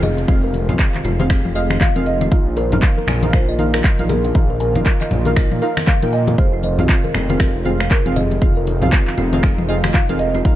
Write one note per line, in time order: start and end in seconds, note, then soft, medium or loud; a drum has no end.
0.00 0.26 F1 medium
0.00 2.27 C3 medium
0.00 6.34 F3 medium
0.00 2.28 G#3 medium
0.00 8.38 F4 medium
0.00 1.51 G#4 medium
0.00 0.11 D#5 medium
0.00 open hi-hat medium
0.00 downlifter medium
0.00 high conga loud
0.00 low conga loud
0.17 closed hi-hat soft
0.17 muted conga medium
0.28 0.70 F1 loud
0.28 0.65 C4 medium
0.28 0.65 F4 medium
0.28 0.43 F4 medium
0.28 0.65 G#4 medium
0.28 0.65 F5 medium
0.28 kick loud
0.28 closed hi-hat medium
0.28 high conga medium
0.44 0.53 A#4 medium
0.54 open hi-hat medium
0.54 muted conga soft
0.69 0.77 C2 medium
0.69 1.16 C4 medium
0.69 1.16 F4 medium
0.69 0.78 F4 loud
0.69 1.16 G#4 medium
0.69 1.16 F5 loud
0.69 closed hi-hat soft
0.69 mid tom medium
0.69 low conga loud
0.79 0.93 C5 medium
0.79 kick loud
0.79 clap loud
0.79 closed hi-hat medium
0.94 clap soft
0.94 muted conga soft
0.94 high conga medium
1.04 1.41 F1 medium
1.04 1.18 F4 loud
1.04 open hi-hat medium
1.04 low conga loud
1.20 1.53 C4 medium
1.20 1.53 F4 medium
1.20 1.53 G#4 medium
1.20 1.29 C5 medium
1.20 1.53 F5 loud
1.20 closed hi-hat soft
1.20 high conga loud
1.30 finger snap medium
1.30 kick loud
1.30 closed hi-hat medium
1.30 muted conga soft
1.45 1.78 F1 medium
1.45 1.54 F4 medium
1.45 mid tom medium
1.55 1.92 C4 medium
1.55 1.92 F4 medium
1.55 1.92 G#4 medium
1.55 1.63 D#5 medium
1.55 1.92 F5 loud
1.55 open hi-hat loud
1.70 finger snap loud
1.70 closed hi-hat soft
1.70 high conga medium
1.81 1.95 F4 medium
1.81 2.05 F5 loud
1.81 kick loud
1.81 clap loud
1.81 closed hi-hat medium
1.81 muted conga soft
1.81 high conga loud
1.96 2.29 F1 medium
1.96 2.06 C4 loud
1.96 2.06 F4 medium
1.96 2.06 G#4 medium
1.96 2.05 A#4 medium
1.96 2.06 F5 loud
1.96 closed hi-hat medium
1.96 mid tom medium
2.06 2.59 D#5 loud
2.06 open hi-hat medium
2.21 2.30 F4 loud
2.21 closed hi-hat soft
2.21 muted conga medium
2.21 high conga loud
2.31 2.74 A#1 loud
2.31 6.34 D#3 medium
2.31 6.34 A#3 medium
2.31 2.68 D#4 medium
2.31 2.69 F4 medium
2.31 2.69 A#4 medium
2.31 2.46 F5 medium
2.31 2.69 F5 medium
2.31 kick loud
2.31 closed hi-hat medium
2.57 2.71 A#4 loud
2.57 3.32 C5 loud
2.57 open hi-hat medium
2.57 muted conga soft
2.72 2.81 F1 medium
2.72 3.19 D#4 medium
2.72 3.19 F4 medium
2.72 3.19 A#4 medium
2.72 2.82 F5 medium
2.72 3.19 F5 loud
2.72 closed hi-hat soft
2.72 mid tom medium
2.72 low conga loud
2.82 kick loud
2.82 clap medium
2.82 closed hi-hat medium
2.98 3.07 A#4 medium
2.98 muted conga soft
2.98 high conga medium
3.07 3.45 A#1 medium
3.07 3.16 G#5 medium
3.07 finger snap loud
3.07 open hi-hat medium
3.07 low conga loud
3.23 3.56 D#4 medium
3.23 3.56 F4 medium
3.23 3.56 A#4 medium
3.23 3.56 F5 loud
3.23 closed hi-hat soft
3.23 high conga loud
3.33 3.48 A#4 medium
3.33 3.59 C5 loud
3.33 finger snap medium
3.33 kick loud
3.33 closed hi-hat medium
3.33 muted conga medium
3.48 3.82 A#1 medium
3.48 3.58 D#5 medium
3.59 3.96 D#4 loud
3.59 3.96 F4 medium
3.59 4.01 A#4 loud
3.59 3.96 A#4 medium
3.59 3.96 F5 loud
3.59 open hi-hat medium
3.59 high conga medium
3.74 3.83 A#4 loud
3.74 finger snap loud
3.74 closed hi-hat soft
3.84 3.99 F5 medium
3.84 kick loud
3.84 clap medium
3.84 closed hi-hat medium
3.84 muted conga soft
3.99 4.32 A#1 medium
3.99 4.10 D#4 medium
3.99 4.10 F4 medium
3.99 4.10 A#4 medium
3.99 4.10 F5 loud
3.99 closed hi-hat medium
3.99 mid tom medium
4.04 4.09 A#4 medium
4.09 4.62 G#4 loud
4.09 4.23 A#4 loud
4.09 open hi-hat medium
4.09 high conga medium
4.09 low conga loud
4.24 4.34 F5 medium
4.24 closed hi-hat soft
4.24 muted conga medium
4.35 4.77 A#1 loud
4.35 4.72 D#4 medium
4.35 4.72 F4 medium
4.35 4.72 A#4 medium
4.35 4.72 F5 medium
4.35 kick loud
4.35 closed hi-hat medium
4.35 high conga medium
4.50 4.59 A#4 medium
4.60 5.91 A#4 loud
4.60 4.68 G#5 medium
4.60 open hi-hat medium
4.60 muted conga medium
4.75 4.84 F1 medium
4.75 5.23 D#4 medium
4.75 5.23 F4 medium
4.75 5.23 A#4 medium
4.75 5.23 F5 medium
4.75 closed hi-hat soft
4.75 mid tom loud
4.75 low conga loud
4.86 5.00 A#4 medium
4.86 kick loud
4.86 clap loud
4.86 closed hi-hat medium
5.01 5.10 D#5 medium
5.01 clap soft
5.01 muted conga soft
5.01 high conga medium
5.11 5.48 A#1 medium
5.11 open hi-hat medium
5.11 low conga loud
5.25 5.60 D#4 medium
5.25 5.60 F4 medium
5.25 5.35 A#4 loud
5.25 5.60 A#4 medium
5.25 5.60 F5 loud
5.25 closed hi-hat soft
5.25 high conga loud
5.36 5.51 F5 medium
5.36 finger snap medium
5.36 kick loud
5.36 closed hi-hat medium
5.52 5.60 A#2 medium
5.52 mid tom medium
5.62 5.77 D#4 loud
5.62 5.77 F4 medium
5.62 5.76 A#4 loud
5.62 5.77 A#4 medium
5.62 5.77 F5 loud
5.62 open hi-hat medium
5.77 5.87 F5 medium
5.77 finger snap medium
5.77 closed hi-hat soft
5.77 high conga medium
5.87 6.11 F5 loud
5.87 kick loud
5.87 clap loud
5.87 closed hi-hat medium
5.87 muted conga soft
5.87 high conga loud
6.02 6.36 A#2 medium
6.02 6.22 D#4 medium
6.02 6.22 F4 medium
6.02 6.12 A#4 medium
6.02 6.22 A#4 medium
6.02 6.22 G5 loud
6.02 closed hi-hat medium
6.02 mid tom medium
6.13 6.37 D#5 loud
6.13 6.21 G#5 medium
6.13 open hi-hat medium
6.28 closed hi-hat soft
6.28 muted conga soft
6.28 high conga loud
6.38 6.81 F1 loud
6.38 10.41 C3 medium
6.38 10.56 F3 medium
6.38 10.41 G#3 medium
6.38 6.75 C4 medium
6.38 6.75 F4 medium
6.38 6.75 G#4 medium
6.38 6.62 C5 loud
6.38 6.75 F5 medium
6.38 kick loud
6.38 closed hi-hat medium
6.53 6.63 F4 medium
6.63 7.16 C5 loud
6.63 6.72 D#5 medium
6.63 open hi-hat medium
6.63 muted conga medium
6.79 6.88 C2 medium
6.79 7.26 C4 medium
6.79 7.26 F4 medium
6.79 7.26 G#4 medium
6.79 7.26 F5 loud
6.79 closed hi-hat soft
6.79 mid tom loud
6.79 low conga loud
6.89 7.04 F4 medium
6.89 kick loud
6.89 clap loud
6.89 closed hi-hat medium
7.04 7.13 A#4 medium
7.04 muted conga soft
7.04 high conga medium
7.14 7.51 F1 medium
7.14 7.62 A#4 loud
7.14 finger snap loud
7.14 open hi-hat medium
7.14 low conga medium
7.30 7.63 C4 medium
7.30 7.35 F4 loud
7.30 7.63 F4 medium
7.30 7.63 G#4 medium
7.30 7.63 F5 loud
7.30 closed hi-hat soft
7.30 high conga loud
7.40 7.54 C5 medium
7.40 finger snap medium
7.40 kick loud
7.40 closed hi-hat medium
7.40 muted conga soft
7.55 7.88 F1 medium
7.65 8.02 C4 loud
7.65 8.02 F4 medium
7.65 7.79 F4 loud
7.65 8.02 G#4 medium
7.65 7.89 C5 loud
7.65 8.02 F5 loud
7.65 open hi-hat medium
7.65 high conga medium
7.80 7.90 C5 medium
7.80 finger snap loud
7.80 closed hi-hat soft
7.91 8.17 A#4 medium
7.91 kick loud
7.91 clap loud
7.91 closed hi-hat medium
7.91 muted conga soft
8.06 8.39 F1 loud
8.06 8.16 C4 loud
8.06 8.15 F4 medium
8.06 8.16 F4 medium
8.06 8.16 G#4 medium
8.06 8.16 F5 loud
8.06 closed hi-hat medium
8.06 mid tom medium
8.16 9.65 G#4 medium
8.16 8.24 D#5 medium
8.16 open hi-hat medium
8.16 high conga medium
8.16 low conga loud
8.31 closed hi-hat soft
8.31 muted conga soft
8.42 8.84 F1 loud
8.42 8.79 C4 medium
8.42 10.43 D#4 medium
8.42 8.56 F4 medium
8.42 8.79 F4 medium
8.42 8.79 G#4 medium
8.42 8.79 F5 medium
8.42 kick loud
8.42 closed hi-hat medium
8.42 high conga medium
8.57 8.66 A#4 medium
8.67 open hi-hat medium
8.67 muted conga medium
8.82 8.91 C2 medium
8.82 9.29 C4 medium
8.82 8.88 F4 loud
8.82 9.29 F4 medium
8.82 9.29 G#4 medium
8.82 9.29 F5 loud
8.82 closed hi-hat soft
8.82 mid tom loud
8.82 low conga loud
8.92 9.07 C5 medium
8.92 kick loud
8.92 clap loud
8.92 closed hi-hat medium
9.07 clap soft
9.07 muted conga soft
9.07 high conga medium
9.18 9.55 F1 medium
9.18 9.31 F4 loud
9.18 open hi-hat medium
9.18 low conga medium
9.33 9.66 C4 medium
9.33 9.66 F4 medium
9.33 9.66 G#4 medium
9.33 9.43 C5 medium
9.33 9.66 F5 loud
9.33 closed hi-hat soft
9.33 high conga loud
9.43 finger snap medium
9.43 kick loud
9.43 closed hi-hat medium
9.43 muted conga soft
9.58 9.92 F1 medium
9.58 9.68 F4 medium
9.58 mid tom loud
9.69 10.06 C4 loud
9.69 10.06 F4 medium
9.69 10.06 G#4 medium
9.69 9.77 D#5 medium
9.69 10.06 F5 loud
9.69 open hi-hat medium
9.84 finger snap medium
9.84 closed hi-hat soft
9.84 high conga medium
9.94 10.08 F4 medium
9.94 10.18 F5 loud
9.94 kick loud
9.94 clap loud
9.94 closed hi-hat medium
9.94 muted conga soft
9.94 high conga loud
10.09 10.42 F1 loud
10.09 10.20 C4 loud
10.09 10.20 F4 medium
10.09 10.20 G#4 medium
10.09 10.18 A#4 medium
10.09 10.20 F5 loud
10.09 closed hi-hat medium
10.09 mid tom medium
10.19 10.56 D#5 loud
10.19 open hi-hat medium
10.34 10.40 F4 loud
10.34 closed hi-hat soft
10.34 muted conga medium
10.34 high conga loud
10.45 10.56 A#1 loud
10.45 10.56 D#3 medium
10.45 10.56 A#3 medium
10.45 10.56 D#4 medium
10.45 10.56 F4 medium
10.45 10.56 A#4 medium
10.45 10.56 F5 medium
10.45 kick loud
10.45 closed hi-hat medium